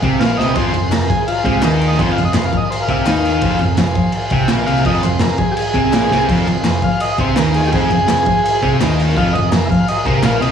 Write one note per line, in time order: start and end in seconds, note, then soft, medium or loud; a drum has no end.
0.00 0.19 C2 loud
0.00 0.20 C3 medium
0.00 0.20 C4 loud
0.00 0.18 F4 medium
0.00 0.18 G#4 medium
0.00 0.19 C5 medium
0.00 kick medium
0.00 crash medium
0.20 0.37 A#1 medium
0.20 0.37 A#2 medium
0.20 0.38 A#3 loud
0.20 0.54 F4 medium
0.20 0.54 G#4 medium
0.20 0.55 C5 medium
0.20 0.37 F5 loud
0.20 snare loud
0.20 crash medium
0.37 0.55 C2 medium
0.37 0.55 C3 medium
0.37 0.56 C4 loud
0.37 0.55 D#5 loud
0.37 snare medium
0.50 0.53 B4 medium
0.55 0.72 F1 loud
0.55 0.72 F2 medium
0.55 0.74 F3 loud
0.55 0.88 F4 medium
0.55 0.89 G#4 medium
0.55 0.90 C5 loud
0.55 0.90 C5 medium
0.55 kick loud
0.55 crash medium
0.74 0.90 F1 medium
0.74 0.88 F2 medium
0.74 crash medium
0.89 1.08 F1 medium
0.89 1.06 F2 medium
0.89 1.24 F4 medium
0.89 1.25 G#4 medium
0.89 1.09 A#4 medium
0.89 1.25 C5 medium
0.89 snare loud
0.89 clap loud
0.89 crash medium
1.10 1.27 G#4 loud
1.10 kick medium
1.10 crash medium
1.27 1.61 F4 medium
1.27 1.43 F4 loud
1.27 1.61 G#4 medium
1.27 1.62 C5 medium
1.27 crash medium
1.44 1.62 C2 loud
1.44 1.62 C3 loud
1.44 1.61 G#3 medium
1.44 1.63 C4 loud
1.44 1.62 F4 loud
1.44 kick medium
1.44 crash medium
1.62 1.96 D#2 medium
1.62 1.99 D#3 medium
1.62 1.99 D#4 medium
1.62 1.95 F4 medium
1.62 1.96 G#4 medium
1.62 1.97 C5 medium
1.62 snare loud
1.62 clap loud
1.62 crash medium
1.81 crash medium
1.88 1.99 D#5 loud
1.88 snare soft
1.96 2.16 F1 loud
1.96 2.16 F2 loud
1.96 2.17 F3 loud
1.96 2.31 F4 medium
1.96 2.32 G#4 medium
1.96 2.11 C5 medium
1.96 2.33 C5 medium
1.96 kick loud
1.96 crash medium
2.12 2.23 F5 loud
2.16 2.33 F1 medium
2.16 2.32 F2 medium
2.16 crash medium
2.25 2.35 D#5 medium
2.33 2.51 F1 medium
2.33 2.49 F2 medium
2.33 2.68 F4 medium
2.33 2.68 G#4 medium
2.33 2.68 A#4 medium
2.33 2.47 C5 medium
2.33 snare loud
2.33 clap medium
2.33 crash medium
2.45 2.58 F5 loud
2.53 kick medium
2.53 crash medium
2.57 2.69 D#5 medium
2.70 3.04 F4 medium
2.70 3.05 G#4 medium
2.70 3.05 A#4 medium
2.70 2.82 C5 loud
2.70 crash medium
2.82 2.94 F5 loud
2.88 3.05 C2 loud
2.88 3.06 C3 medium
2.88 3.06 C4 loud
2.88 2.93 E5 medium
2.88 kick medium
2.88 crash medium
2.96 3.65 F5 loud
3.06 3.39 D#2 medium
3.06 3.42 D#3 medium
3.06 3.42 D#4 loud
3.06 3.41 F4 medium
3.06 3.41 G#4 medium
3.06 3.41 C5 medium
3.06 snare loud
3.06 clap loud
3.06 crash medium
3.25 snare soft
3.25 crash medium
3.41 3.59 F1 loud
3.41 3.59 F2 loud
3.41 3.60 F3 loud
3.41 3.76 F4 medium
3.41 3.77 G#4 medium
3.41 kick loud
3.41 crash medium
3.46 3.77 C5 loud
3.59 3.77 F1 medium
3.59 3.75 F2 medium
3.59 crash medium
3.77 3.96 F1 medium
3.77 3.92 F2 medium
3.77 4.12 F4 medium
3.77 4.13 G#4 medium
3.77 4.12 C5 loud
3.77 snare loud
3.77 clap medium
3.77 crash medium
3.95 kick medium
3.95 crash medium
4.12 crash medium
4.17 4.49 F4 medium
4.17 4.49 G#4 medium
4.17 4.50 C5 medium
4.30 4.48 C2 loud
4.30 4.48 C3 medium
4.30 4.49 C4 loud
4.30 kick medium
4.30 crash medium
4.48 4.66 A#1 loud
4.48 4.67 A#2 medium
4.48 4.67 A#3 loud
4.48 4.84 F4 medium
4.48 4.84 G#4 medium
4.48 4.84 A#4 loud
4.48 snare loud
4.48 clap loud
4.48 crash medium
4.67 4.84 C2 loud
4.67 4.85 C3 loud
4.67 4.85 C4 medium
4.67 4.85 F5 loud
4.67 crash medium
4.76 snare soft
4.84 5.02 F1 loud
4.84 5.02 F2 medium
4.84 5.03 F3 loud
4.84 5.20 F4 medium
4.84 5.19 G#4 medium
4.84 5.20 C5 medium
4.84 5.03 D#5 loud
4.84 kick loud
4.84 crash medium
5.03 5.20 F1 medium
5.03 5.18 F2 medium
5.03 5.21 C5 medium
5.03 clap medium
5.03 crash medium
5.20 5.38 F1 medium
5.20 5.35 F2 medium
5.20 5.54 F4 medium
5.20 5.54 G#4 medium
5.20 5.38 A#4 medium
5.20 5.56 C5 medium
5.20 snare loud
5.20 clap medium
5.20 crash medium
5.38 5.55 G#4 medium
5.38 kick medium
5.38 crash medium
5.52 5.90 F4 medium
5.52 5.55 G4 medium
5.56 6.27 G#4 loud
5.56 5.91 G#4 medium
5.56 5.91 D#5 medium
5.56 crash medium
5.74 5.92 C2 medium
5.74 5.92 C3 loud
5.74 5.92 C4 loud
5.74 kick medium
5.74 crash medium
5.92 6.10 A#1 medium
5.92 6.10 A#2 medium
5.92 6.11 A#3 loud
5.92 6.26 F4 medium
5.92 6.26 G#4 medium
5.92 6.27 C5 medium
5.92 snare loud
5.92 clap loud
5.92 crash medium
6.10 6.28 C2 medium
6.10 6.28 C3 loud
6.10 6.29 C4 loud
6.10 snare medium
6.28 6.45 F1 loud
6.28 6.46 F2 medium
6.28 6.47 F3 loud
6.28 6.61 F4 medium
6.28 6.62 G#4 medium
6.28 6.62 C5 loud
6.28 kick loud
6.28 crash medium
6.46 6.63 F1 medium
6.46 6.62 F2 medium
6.46 crash medium
6.62 6.82 F1 medium
6.62 6.79 F2 medium
6.62 6.97 F4 medium
6.62 6.98 G#4 medium
6.62 6.99 C5 loud
6.62 snare loud
6.62 clap medium
6.62 crash medium
6.82 7.01 F5 medium
6.82 kick medium
6.82 crash medium
6.99 7.33 F4 medium
6.99 7.34 G#4 medium
6.99 7.34 C5 medium
6.99 7.18 D#5 loud
6.99 crash medium
7.18 7.35 C2 medium
7.18 7.36 C3 loud
7.18 7.37 C4 loud
7.18 7.37 C5 loud
7.18 kick medium
7.18 crash medium
7.34 7.70 D#2 loud
7.34 7.72 D#3 medium
7.34 7.73 D#4 medium
7.34 7.69 F4 medium
7.34 7.70 G#4 medium
7.34 7.70 C5 medium
7.34 snare loud
7.34 clap loud
7.34 crash medium
7.39 7.55 A#4 loud
7.54 7.71 G#4 medium
7.54 snare soft
7.54 crash medium
7.63 7.70 G4 medium
7.63 snare soft
7.72 7.90 F1 medium
7.72 7.90 F2 medium
7.72 7.90 F3 loud
7.72 8.05 F4 medium
7.72 8.77 G#4 loud
7.72 8.05 G#4 medium
7.72 8.07 C5 medium
7.72 kick loud
7.72 crash medium
7.90 8.07 F1 medium
7.90 8.05 F2 medium
7.90 crash medium
8.06 8.25 F1 medium
8.06 8.23 F2 medium
8.06 8.41 F4 medium
8.06 8.41 G#4 medium
8.06 8.42 C5 medium
8.06 snare loud
8.06 clap loud
8.06 crash medium
8.26 kick medium
8.26 crash medium
8.43 8.77 F4 medium
8.43 8.78 G#4 medium
8.43 8.78 C5 medium
8.43 crash medium
8.62 8.79 C2 loud
8.62 8.80 C3 loud
8.62 8.80 C4 loud
8.62 kick medium
8.62 crash medium
8.79 9.13 D#2 loud
8.79 9.16 D#3 loud
8.79 9.17 D#4 medium
8.79 9.14 F4 medium
8.79 9.14 G#4 medium
8.79 9.14 C5 loud
8.79 snare loud
8.79 clap loud
8.79 crash medium
8.99 snare soft
8.99 crash medium
9.09 snare soft
9.16 9.32 F1 loud
9.16 9.33 F2 loud
9.16 9.34 F3 loud
9.16 9.49 F4 medium
9.16 9.50 G#4 medium
9.16 9.50 D#5 medium
9.16 9.34 F5 loud
9.16 kick loud
9.16 crash medium
9.33 9.50 F1 medium
9.33 9.49 F2 medium
9.33 9.51 D#5 loud
9.33 crash medium
9.52 9.69 F1 medium
9.52 9.67 F2 medium
9.52 9.86 F4 medium
9.52 9.87 G#4 medium
9.52 9.69 A#4 medium
9.52 9.87 C5 medium
9.52 snare loud
9.52 clap medium
9.52 crash medium
9.65 9.68 E5 medium
9.70 9.88 F5 medium
9.70 kick medium
9.70 crash medium
9.88 10.23 F4 medium
9.88 10.23 G#4 medium
9.88 10.23 C5 medium
9.88 10.06 D#5 loud
9.88 crash medium
10.05 10.22 C2 loud
10.05 10.23 C3 loud
10.05 10.24 C4 loud
10.05 10.23 A#4 medium
10.05 kick medium
10.05 crash medium
10.22 10.40 A#1 loud
10.22 10.41 A#2 medium
10.22 10.42 A#3 loud
10.22 10.52 F4 medium
10.22 10.42 F5 loud
10.22 snare loud
10.22 clap loud
10.22 crash medium
10.27 10.52 G#4 medium
10.27 10.52 C5 medium
10.40 10.52 C2 medium
10.40 10.52 C3 medium
10.40 10.52 C4 loud
10.40 10.52 D#5 medium
10.40 snare soft
10.40 crash medium